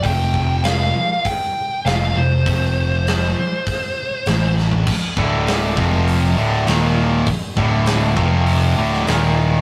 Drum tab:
CC |----------------|----------------|x---------------|----------------|
HH |o---o---o---o---|o---o---o---o---|----o---o---o---|o---o---o---o---|
SD |----o-------o---|----o-------o-o-|----o-------o---|----o------oo---|
FT |----------------|---------------o|----------------|----------------|
BD |o-o-----o-------|o-------o-------|o-o---o---------|o-o---o---------|